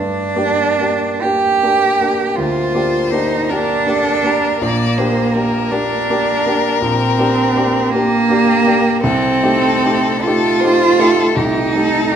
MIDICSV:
0, 0, Header, 1, 4, 480
1, 0, Start_track
1, 0, Key_signature, -2, "minor"
1, 0, Tempo, 847458
1, 921, Tempo, 747198
1, 2840, Time_signature, 12, 3, 24, 8
1, 2841, Tempo, 736196
1, 5721, Tempo, 797872
1, 6681, Tempo, 753769
1, 7655, End_track
2, 0, Start_track
2, 0, Title_t, "Violin"
2, 0, Program_c, 0, 40
2, 1398, Note_on_c, 0, 72, 76
2, 2122, Note_on_c, 0, 70, 60
2, 2131, Note_off_c, 0, 72, 0
2, 2360, Note_off_c, 0, 70, 0
2, 2373, Note_on_c, 0, 69, 68
2, 2611, Note_on_c, 0, 70, 71
2, 2620, Note_off_c, 0, 69, 0
2, 2849, Note_on_c, 0, 74, 73
2, 2859, Note_off_c, 0, 70, 0
2, 3080, Note_on_c, 0, 72, 67
2, 3090, Note_off_c, 0, 74, 0
2, 3321, Note_on_c, 0, 70, 82
2, 3331, Note_off_c, 0, 72, 0
2, 4999, Note_off_c, 0, 70, 0
2, 5004, Note_on_c, 0, 67, 81
2, 5708, Note_off_c, 0, 67, 0
2, 5719, Note_on_c, 0, 69, 80
2, 6433, Note_off_c, 0, 69, 0
2, 6443, Note_on_c, 0, 69, 85
2, 6667, Note_on_c, 0, 72, 85
2, 6676, Note_off_c, 0, 69, 0
2, 6919, Note_on_c, 0, 69, 79
2, 6928, Note_off_c, 0, 72, 0
2, 7149, Note_on_c, 0, 67, 67
2, 7159, Note_off_c, 0, 69, 0
2, 7380, Note_on_c, 0, 69, 77
2, 7389, Note_off_c, 0, 67, 0
2, 7634, Note_on_c, 0, 67, 77
2, 7643, Note_off_c, 0, 69, 0
2, 7655, Note_off_c, 0, 67, 0
2, 7655, End_track
3, 0, Start_track
3, 0, Title_t, "Cello"
3, 0, Program_c, 1, 42
3, 0, Note_on_c, 1, 62, 101
3, 690, Note_on_c, 1, 67, 89
3, 699, Note_off_c, 1, 62, 0
3, 1392, Note_on_c, 1, 65, 92
3, 1401, Note_off_c, 1, 67, 0
3, 1875, Note_on_c, 1, 63, 85
3, 1885, Note_off_c, 1, 65, 0
3, 2122, Note_on_c, 1, 62, 103
3, 2132, Note_off_c, 1, 63, 0
3, 2841, Note_off_c, 1, 62, 0
3, 2850, Note_on_c, 1, 58, 90
3, 3556, Note_on_c, 1, 62, 93
3, 3566, Note_off_c, 1, 58, 0
3, 4270, Note_on_c, 1, 60, 95
3, 4280, Note_off_c, 1, 62, 0
3, 4983, Note_on_c, 1, 58, 111
3, 4993, Note_off_c, 1, 60, 0
3, 5704, Note_on_c, 1, 60, 102
3, 5713, Note_off_c, 1, 58, 0
3, 6436, Note_on_c, 1, 65, 115
3, 6445, Note_off_c, 1, 60, 0
3, 7136, Note_on_c, 1, 63, 93
3, 7146, Note_off_c, 1, 65, 0
3, 7655, Note_off_c, 1, 63, 0
3, 7655, End_track
4, 0, Start_track
4, 0, Title_t, "Grand piano"
4, 0, Program_c, 2, 0
4, 0, Note_on_c, 2, 43, 60
4, 85, Control_c, 2, 64, 127
4, 191, Note_off_c, 2, 43, 0
4, 202, Note_on_c, 2, 58, 46
4, 206, Note_on_c, 2, 67, 55
4, 207, Note_on_c, 2, 62, 50
4, 431, Note_off_c, 2, 58, 0
4, 433, Note_off_c, 2, 62, 0
4, 433, Note_off_c, 2, 67, 0
4, 451, Note_on_c, 2, 58, 44
4, 454, Note_on_c, 2, 62, 43
4, 458, Note_on_c, 2, 67, 44
4, 672, Note_off_c, 2, 58, 0
4, 674, Note_off_c, 2, 62, 0
4, 676, Note_off_c, 2, 67, 0
4, 699, Note_on_c, 2, 58, 45
4, 701, Note_on_c, 2, 62, 43
4, 702, Note_on_c, 2, 67, 49
4, 900, Note_off_c, 2, 58, 0
4, 901, Note_off_c, 2, 62, 0
4, 902, Note_off_c, 2, 67, 0
4, 925, Note_on_c, 2, 58, 51
4, 926, Note_on_c, 2, 62, 46
4, 931, Note_on_c, 2, 67, 54
4, 1141, Note_off_c, 2, 58, 0
4, 1142, Note_off_c, 2, 62, 0
4, 1145, Note_off_c, 2, 67, 0
4, 1165, Note_on_c, 2, 58, 49
4, 1170, Note_on_c, 2, 62, 48
4, 1172, Note_on_c, 2, 67, 53
4, 1378, Note_off_c, 2, 58, 0
4, 1381, Note_off_c, 2, 62, 0
4, 1382, Note_off_c, 2, 67, 0
4, 1404, Note_on_c, 2, 38, 49
4, 1633, Note_off_c, 2, 38, 0
4, 1640, Note_on_c, 2, 58, 44
4, 1641, Note_on_c, 2, 62, 49
4, 1643, Note_on_c, 2, 67, 53
4, 1856, Note_off_c, 2, 58, 0
4, 1857, Note_off_c, 2, 62, 0
4, 1858, Note_off_c, 2, 67, 0
4, 1880, Note_on_c, 2, 58, 52
4, 1882, Note_on_c, 2, 62, 51
4, 1886, Note_on_c, 2, 67, 48
4, 2097, Note_off_c, 2, 58, 0
4, 2098, Note_off_c, 2, 62, 0
4, 2100, Note_off_c, 2, 67, 0
4, 2124, Note_on_c, 2, 58, 44
4, 2129, Note_on_c, 2, 62, 44
4, 2131, Note_on_c, 2, 67, 52
4, 2337, Note_off_c, 2, 58, 0
4, 2340, Note_off_c, 2, 62, 0
4, 2341, Note_off_c, 2, 67, 0
4, 2360, Note_on_c, 2, 58, 47
4, 2365, Note_on_c, 2, 62, 51
4, 2367, Note_on_c, 2, 67, 51
4, 2576, Note_off_c, 2, 58, 0
4, 2579, Note_off_c, 2, 62, 0
4, 2580, Note_off_c, 2, 67, 0
4, 2597, Note_on_c, 2, 58, 46
4, 2598, Note_on_c, 2, 62, 47
4, 2601, Note_on_c, 2, 67, 49
4, 2814, Note_off_c, 2, 58, 0
4, 2815, Note_off_c, 2, 62, 0
4, 2817, Note_off_c, 2, 67, 0
4, 2840, Note_on_c, 2, 34, 64
4, 2851, Control_c, 2, 64, 0
4, 2956, Control_c, 2, 64, 127
4, 3072, Note_off_c, 2, 34, 0
4, 3080, Note_on_c, 2, 58, 54
4, 3080, Note_on_c, 2, 62, 49
4, 3083, Note_on_c, 2, 67, 56
4, 3294, Note_off_c, 2, 62, 0
4, 3295, Note_off_c, 2, 58, 0
4, 3297, Note_off_c, 2, 67, 0
4, 3318, Note_on_c, 2, 58, 42
4, 3320, Note_on_c, 2, 62, 44
4, 3323, Note_on_c, 2, 67, 44
4, 3537, Note_off_c, 2, 58, 0
4, 3538, Note_off_c, 2, 62, 0
4, 3539, Note_off_c, 2, 67, 0
4, 3556, Note_on_c, 2, 58, 50
4, 3559, Note_on_c, 2, 62, 49
4, 3560, Note_on_c, 2, 67, 48
4, 3777, Note_off_c, 2, 58, 0
4, 3778, Note_off_c, 2, 62, 0
4, 3779, Note_off_c, 2, 67, 0
4, 3810, Note_on_c, 2, 58, 52
4, 3810, Note_on_c, 2, 62, 51
4, 3814, Note_on_c, 2, 67, 54
4, 4020, Note_off_c, 2, 58, 0
4, 4021, Note_off_c, 2, 62, 0
4, 4023, Note_off_c, 2, 67, 0
4, 4046, Note_on_c, 2, 58, 56
4, 4047, Note_on_c, 2, 62, 55
4, 4050, Note_on_c, 2, 67, 58
4, 4255, Note_off_c, 2, 58, 0
4, 4255, Note_off_c, 2, 62, 0
4, 4257, Note_off_c, 2, 67, 0
4, 4276, Note_on_c, 2, 34, 57
4, 4507, Note_off_c, 2, 34, 0
4, 4518, Note_on_c, 2, 58, 54
4, 4520, Note_on_c, 2, 62, 54
4, 4522, Note_on_c, 2, 67, 59
4, 4734, Note_off_c, 2, 58, 0
4, 4735, Note_off_c, 2, 62, 0
4, 4737, Note_off_c, 2, 67, 0
4, 4759, Note_on_c, 2, 58, 59
4, 4765, Note_on_c, 2, 62, 51
4, 4766, Note_on_c, 2, 67, 57
4, 4976, Note_off_c, 2, 58, 0
4, 4978, Note_off_c, 2, 62, 0
4, 4980, Note_off_c, 2, 67, 0
4, 5009, Note_on_c, 2, 58, 52
4, 5011, Note_on_c, 2, 62, 54
4, 5015, Note_on_c, 2, 67, 55
4, 5220, Note_off_c, 2, 58, 0
4, 5220, Note_off_c, 2, 62, 0
4, 5223, Note_off_c, 2, 67, 0
4, 5240, Note_on_c, 2, 58, 56
4, 5245, Note_on_c, 2, 62, 57
4, 5246, Note_on_c, 2, 67, 65
4, 5454, Note_off_c, 2, 58, 0
4, 5457, Note_off_c, 2, 62, 0
4, 5457, Note_off_c, 2, 67, 0
4, 5485, Note_on_c, 2, 58, 53
4, 5486, Note_on_c, 2, 62, 54
4, 5489, Note_on_c, 2, 67, 58
4, 5699, Note_off_c, 2, 58, 0
4, 5700, Note_off_c, 2, 62, 0
4, 5701, Note_off_c, 2, 67, 0
4, 5725, Note_on_c, 2, 36, 66
4, 5730, Control_c, 2, 64, 0
4, 5828, Control_c, 2, 64, 127
4, 5949, Note_off_c, 2, 36, 0
4, 5963, Note_on_c, 2, 57, 58
4, 5964, Note_on_c, 2, 63, 54
4, 5965, Note_on_c, 2, 67, 60
4, 6183, Note_off_c, 2, 57, 0
4, 6183, Note_off_c, 2, 63, 0
4, 6183, Note_off_c, 2, 67, 0
4, 6210, Note_on_c, 2, 57, 47
4, 6214, Note_on_c, 2, 63, 47
4, 6217, Note_on_c, 2, 67, 58
4, 6428, Note_off_c, 2, 57, 0
4, 6430, Note_off_c, 2, 63, 0
4, 6432, Note_off_c, 2, 67, 0
4, 6461, Note_on_c, 2, 57, 52
4, 6464, Note_on_c, 2, 63, 56
4, 6465, Note_on_c, 2, 67, 58
4, 6662, Note_off_c, 2, 57, 0
4, 6664, Note_off_c, 2, 63, 0
4, 6665, Note_off_c, 2, 67, 0
4, 6687, Note_on_c, 2, 57, 55
4, 6688, Note_on_c, 2, 63, 50
4, 6692, Note_on_c, 2, 67, 59
4, 6894, Note_off_c, 2, 57, 0
4, 6895, Note_off_c, 2, 63, 0
4, 6897, Note_off_c, 2, 67, 0
4, 6914, Note_on_c, 2, 57, 54
4, 6918, Note_on_c, 2, 63, 51
4, 6922, Note_on_c, 2, 67, 56
4, 7125, Note_off_c, 2, 57, 0
4, 7128, Note_off_c, 2, 63, 0
4, 7130, Note_off_c, 2, 67, 0
4, 7151, Note_on_c, 2, 36, 59
4, 7384, Note_off_c, 2, 36, 0
4, 7396, Note_on_c, 2, 57, 47
4, 7396, Note_on_c, 2, 63, 51
4, 7402, Note_on_c, 2, 67, 52
4, 7617, Note_off_c, 2, 57, 0
4, 7617, Note_off_c, 2, 63, 0
4, 7621, Note_off_c, 2, 67, 0
4, 7655, End_track
0, 0, End_of_file